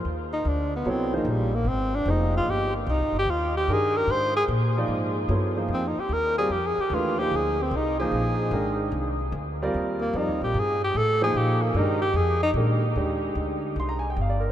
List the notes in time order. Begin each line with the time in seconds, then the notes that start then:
0.05 D#2
0.33 D#4
0.45 D2 D4
0.76 B3
0.85 C2 F#3 B3 E4 A4 C#5
0.90 C4
1.13 D#3 F3 A#3 D#4 G#4 C5
1.25 A#1
1.30 G3
1.55 A#3
1.64 G#1 C4
1.95 D4
2.06 F1 F3 A#3 D#4 G#4 C5
2.10 D#4
2.37 F4
2.46 G1
2.51 G4
2.76 A#3
2.87 C2 D#4
2.99 G#1
3.12 G1
3.19 G4
3.25 D#2
3.30 F4
3.57 G4
3.68 G2 D#3 D4 G4 G#4 A#4
3.73 G#4
3.97 A#4
4.07 G#2
4.11 C5
4.36 G#4
4.48 A#2
4.77 F3 A#3 D#4 G#4 D5
4.88 G#2
5.29 G2 F#3 B3 E4 A4 C#5
5.57 F3 A#3 D#4 G#4 C5
5.68 F2
5.74 C4
5.88 D#4
5.97 G4, muted upright bass stroke
6.09 D#2
6.13 A#4
6.38 G3 C4 F4 G#4 A#4 D5
6.49 F2 G4
6.66 G#4
6.77 G4, muted upright bass stroke
6.90 D#2 E3 A3 D4 G4 B4
6.95 F4
7.19 F3 A#3 D#4 G4 G#4 C5
7.31 D2
7.36 G#4
7.62 C4
7.71 C2
7.76 D#4
8.00 F3 A#3 D#4 G#4 C5
8.11 A#1
8.51 G#1 D#3 G#3 D4 A#4 G5
8.92 C2
9.32 D2
9.62 G3 C4 F4 A#4 D5
9.74 D#2
10.01 A#3
10.13 F2 G3 C4 D#4 F4 A#4 D5
10.28 D#2
10.41 A#1 G4
10.54 G2
10.59 G#4
10.84 G4
10.94 A2 A4
11.21 F3 A#3 D#4 G#4 C5
11.34 A#2 G4
11.62 A#3
11.74 G2 D#3 G#3 D4 D#4 G4 A#4
12.02 G4
12.13 F2 G#4
12.43 D#4
12.54 A#2 D#3 G#3 D4 G4 A#4
12.96 D#2 G#3 D4 D#4 G4
13.35 D2
13.76 C2 C6
13.89 A#5
13.99 G#5
14.10 G5
14.17 G1
14.21 F5
14.29 D5
14.40 A#4